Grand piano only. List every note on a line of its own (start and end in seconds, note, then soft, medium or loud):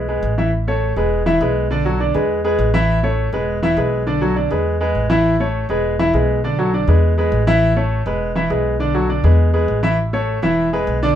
0.08 0.32 G#3 medium
0.08 0.33 G#4 medium
0.08 0.33 B4 medium
0.38 0.50 E3 medium
0.38 0.50 E4 medium
0.38 0.50 E5 medium
0.67 0.91 A3 medium
0.67 0.92 A4 medium
0.67 0.92 C#5 medium
0.97 1.21 G#3 medium
0.97 1.21 G#4 medium
0.97 1.21 B4 medium
1.26 1.38 E3 medium
1.26 1.38 E4 loud
1.26 1.38 E5 loud
1.41 1.65 G#3 medium
1.41 1.65 G#4 medium
1.41 1.66 B4 medium
1.71 1.82 D3 medium
1.71 1.83 D4 medium
1.71 1.83 D5 medium
1.85 1.97 F#3 medium
1.85 1.97 F#4 medium
1.85 1.98 A4 medium
2.00 2.12 D3 medium
2.00 2.12 D4 medium
2.00 2.12 D5 medium
2.15 2.39 G#3 medium
2.15 2.39 G#4 medium
2.15 2.39 B4 medium
2.44 2.68 G#3 medium
2.44 2.69 G#4 medium
2.44 2.69 B4 medium
2.74 2.98 E3 loud
2.74 2.98 E4 loud
2.74 2.98 E5 loud
3.03 3.27 A3 medium
3.03 3.28 A4 medium
3.03 3.28 C#5 medium
3.33 3.57 G#3 medium
3.33 3.57 G#4 medium
3.33 3.57 B4 medium
3.62 3.74 E3 medium
3.62 3.75 E4 medium
3.62 3.75 E5 loud
3.77 4.01 G#3 medium
3.77 4.01 G#4 medium
3.77 4.02 B4 medium
4.07 4.19 D3 medium
4.07 4.19 D4 medium
4.07 4.19 D5 medium
4.21 4.33 F#3 medium
4.21 4.33 F#4 medium
4.21 4.34 A4 medium
4.36 4.48 D3 medium
4.36 4.48 D4 medium
4.36 4.48 D5 medium
4.51 4.75 G#3 medium
4.51 4.75 G#4 medium
4.51 4.75 B4 medium
4.81 5.05 G#3 medium
4.81 5.05 G#4 medium
4.81 5.05 B4 medium
5.10 5.34 E3 loud
5.10 5.34 E4 loud
5.10 5.34 E5 medium
5.40 5.64 A3 medium
5.40 5.64 A4 medium
5.40 5.64 C#5 medium
5.70 5.94 G#3 medium
5.70 5.94 G#4 medium
5.70 5.94 B4 medium
5.99 6.11 E3 medium
5.99 6.11 E4 loud
5.99 6.11 E5 loud
6.14 6.38 G#3 medium
6.14 6.38 G#4 medium
6.14 6.38 B4 medium
6.44 6.56 D3 medium
6.44 6.56 D4 medium
6.44 6.56 D5 medium
6.59 6.70 F#3 medium
6.59 6.70 F#4 medium
6.59 6.71 A4 medium
6.74 6.85 D3 medium
6.74 6.85 D4 medium
6.74 6.86 D5 medium
6.88 7.12 G#3 medium
6.88 7.12 G#4 medium
6.88 7.12 B4 medium
7.18 7.42 G#3 medium
7.18 7.42 G#4 medium
7.18 7.42 B4 medium
7.47 7.71 E3 loud
7.47 7.71 E4 loud
7.47 7.71 E5 loud
7.76 8.00 A3 medium
7.76 8.01 A4 medium
7.76 8.01 C#5 medium
8.06 8.30 G#3 medium
8.06 8.30 G#4 medium
8.06 8.31 B4 medium
8.35 8.48 E3 medium
8.35 8.48 E4 medium
8.35 8.48 E5 medium
8.50 8.74 G#3 medium
8.50 8.75 G#4 medium
8.50 8.75 B4 medium
8.80 8.92 D3 medium
8.80 8.92 D4 medium
8.80 8.92 D5 medium
8.94 9.07 F#3 medium
8.94 9.07 F#4 medium
8.94 9.07 A4 medium
9.09 9.21 D3 medium
9.09 9.22 D4 medium
9.09 9.22 D5 medium
9.24 9.48 G#3 medium
9.24 9.48 G#4 medium
9.24 9.49 B4 medium
9.53 9.78 G#3 medium
9.53 9.78 G#4 medium
9.53 9.78 B4 medium
9.83 9.95 E3 loud
9.83 9.95 E4 medium
9.83 9.96 E5 loud
10.13 10.37 A3 medium
10.13 10.37 A4 medium
10.13 10.38 C#5 medium
10.43 10.67 E3 loud
10.43 10.67 E4 medium
10.43 10.67 E5 medium
10.73 10.97 G#3 medium
10.73 10.97 G#4 medium
10.73 10.97 B4 medium
11.03 11.14 D3 loud
11.03 11.15 D4 loud
11.03 11.15 D5 loud